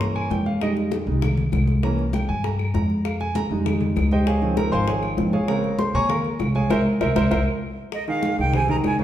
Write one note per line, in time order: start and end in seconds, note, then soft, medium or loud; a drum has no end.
0.00 0.27 G2 medium
0.00 0.57 E3 medium
0.00 0.57 A#3 medium
0.00 0.58 C#4 medium
0.00 0.15 A#5 medium
0.00 high bongo medium
0.00 high conga soft
0.15 0.30 G#5 medium
0.15 high bongo soft
0.15 high conga soft
0.15 claves medium
0.30 1.01 F2 medium
0.30 0.45 G5 medium
0.30 high bongo soft
0.30 low bongo medium
0.30 high conga medium
0.46 0.61 F5 medium
0.46 high bongo soft
0.61 1.06 G3 medium
0.61 1.06 G#3 soft
0.61 1.06 D#4 medium
0.61 0.71 D#5 medium
0.61 high bongo medium
0.61 high conga soft
0.61 claves medium
0.77 high bongo soft
0.77 high conga soft
0.92 high bongo medium
0.92 high conga medium
1.07 1.49 C2 medium
1.07 1.21 G3 soft
1.07 1.21 G#3 soft
1.07 1.21 D#4 medium
1.07 high conga soft
1.22 high bongo medium
1.22 high conga soft
1.22 low conga medium
1.22 claves medium
1.37 high bongo soft
1.37 high conga soft
1.37 low conga medium
1.52 2.23 C2 medium
1.52 high bongo soft
1.52 low bongo medium
1.52 high conga medium
1.52 claves medium
1.68 high bongo soft
1.68 high conga medium
1.83 2.03 E3 medium
1.83 2.03 A#3 medium
1.83 2.04 C#4 medium
1.83 2.11 A#5 medium
1.83 high bongo medium
1.83 high conga soft
1.98 high bongo soft
1.98 high conga soft
2.13 2.28 G5 medium
2.13 high bongo medium
2.13 high conga loud
2.13 claves medium
2.29 2.71 G2 medium
2.29 2.43 G#5 loud
2.44 2.59 A#5 medium
2.44 high bongo medium
2.44 high conga soft
2.59 high bongo soft
2.59 high conga soft
2.59 claves medium
2.74 3.45 F2 medium
2.74 3.03 A#5 medium
2.74 high bongo soft
2.74 low bongo medium
2.74 high conga medium
2.90 high bongo soft
3.05 3.20 F5 medium
3.05 high bongo medium
3.05 claves medium
3.20 3.35 G#5 loud
3.20 high bongo soft
3.20 high conga soft
3.35 3.45 A#5 medium
3.35 high bongo medium
3.35 high conga loud
3.51 3.93 F2 medium
3.51 4.23 G3 medium
3.51 4.23 G#3 medium
3.51 4.24 D#4 medium
3.51 high conga soft
3.66 high bongo medium
3.66 high conga soft
3.66 low conga medium
3.66 claves medium
3.81 high bongo soft
3.81 high conga soft
3.81 low conga medium
3.96 4.67 C#2 medium
3.96 high bongo soft
3.96 low bongo medium
3.96 high conga medium
3.96 claves medium
4.11 4.27 G4 medium
4.11 4.27 C5 medium
4.11 4.27 D#5 medium
4.11 4.27 G5 medium
4.11 high bongo soft
4.11 high conga medium
4.27 4.56 G#4 medium
4.27 4.55 C#5 medium
4.27 4.55 F5 medium
4.27 4.55 G#5 medium
4.27 high bongo medium
4.27 high conga soft
4.42 5.16 D#3 medium
4.42 5.16 F3 medium
4.42 5.17 C4 medium
4.42 high bongo soft
4.42 high conga soft
4.57 4.72 A#4 medium
4.57 4.72 A#5 medium
4.57 high bongo medium
4.57 high conga loud
4.57 claves medium
4.72 5.15 G#1 loud
4.72 4.87 C5 medium
4.72 4.87 F5 medium
4.72 4.87 G#5 medium
4.72 4.87 C6 loud
4.87 5.03 G#4 medium
4.87 5.03 C#5 medium
4.87 5.03 F5 medium
4.87 5.03 G#5 medium
4.87 high bongo medium
4.87 high conga soft
5.02 high bongo soft
5.02 high conga soft
5.02 claves medium
5.17 5.89 A#1 loud
5.17 5.31 D#3 soft
5.17 5.32 F3 soft
5.17 5.32 C4 soft
5.17 high bongo soft
5.17 low bongo medium
5.17 high conga medium
5.33 5.48 G#4 medium
5.33 5.47 C#5 medium
5.33 5.47 F5 medium
5.33 5.48 G#5 medium
5.33 high bongo soft
5.48 5.68 C#3 medium
5.48 5.69 G#3 soft
5.48 5.69 C4 medium
5.48 5.77 A#4 medium
5.48 5.77 C#5 medium
5.48 5.77 F5 medium
5.48 5.77 A#5 medium
5.48 high bongo medium
5.48 high conga soft
5.48 claves medium
5.63 high bongo soft
5.63 high conga soft
5.78 5.94 C5 medium
5.78 5.94 C6 medium
5.78 high bongo medium
5.78 high conga loud
5.93 6.37 A#2 loud
5.93 6.09 C#5 medium
5.93 6.10 G#5 medium
5.93 6.08 A#5 medium
5.93 6.09 C#6 loud
5.93 high conga soft
6.09 6.25 A#4 medium
6.09 6.25 C#5 medium
6.09 6.24 F5 medium
6.09 6.24 A#5 medium
6.09 high bongo medium
6.09 high conga soft
6.09 low conga medium
6.09 claves medium
6.24 high bongo soft
6.24 high conga soft
6.39 6.68 C2 medium
6.39 high bongo soft
6.39 low bongo medium
6.39 high conga medium
6.39 claves medium
6.55 6.70 G#4 medium
6.55 6.70 C#5 medium
6.55 6.70 F5 medium
6.55 6.70 G#5 loud
6.55 high bongo soft
6.55 high conga medium
6.70 6.82 C2 medium
6.70 6.80 A#4 loud
6.70 6.80 C5 medium
6.70 6.80 E5 medium
6.70 low bongo loud
6.70 high conga loud
6.70 claves loud
7.01 7.12 C2 loud
7.01 7.11 A#4 medium
7.01 7.11 C5 medium
7.01 7.11 E5 medium
7.01 low bongo loud
7.01 high conga loud
7.01 claves medium
7.16 7.27 C2 loud
7.16 7.26 A#4 medium
7.16 7.26 C5 loud
7.16 7.26 E5 medium
7.16 low bongo loud
7.16 high conga loud
7.16 claves loud
7.31 7.43 C2 medium
7.31 7.41 A#4 medium
7.31 7.41 C5 loud
7.31 7.41 E5 medium
7.31 low bongo loud
7.31 high conga medium
7.31 claves loud
7.92 8.07 D#5 loud
7.92 high bongo medium
7.92 high conga soft
7.92 claves medium
8.07 8.33 D#3 medium
8.07 8.33 D#4 medium
8.07 8.33 G#4 medium
8.07 8.37 F5 loud
8.07 high bongo soft
8.07 high conga soft
8.23 high bongo medium
8.23 high conga medium
8.38 8.81 C2 medium
8.38 8.51 D#3 medium
8.38 8.51 D#4 medium
8.38 8.51 G#4 medium
8.38 8.53 G5 loud
8.38 high conga soft
8.53 8.66 C3 medium
8.53 8.66 C4 medium
8.53 8.67 C5 medium
8.53 8.69 G#5 loud
8.53 high bongo medium
8.53 high conga soft
8.53 low conga medium
8.53 claves medium
8.68 8.94 D#3 medium
8.68 8.94 D#4 medium
8.68 8.94 G#4 medium
8.68 8.76 A#5 loud
8.68 high bongo soft
8.68 high conga soft
8.68 low conga medium
8.84 9.04 C#2 medium
8.84 8.99 G#5 loud
8.84 high bongo soft
8.84 low bongo medium
8.84 high conga medium
8.84 claves medium
8.99 9.04 C#3 medium
8.99 9.04 C#4 medium
8.99 9.04 C#5 medium
8.99 high bongo soft
8.99 high conga medium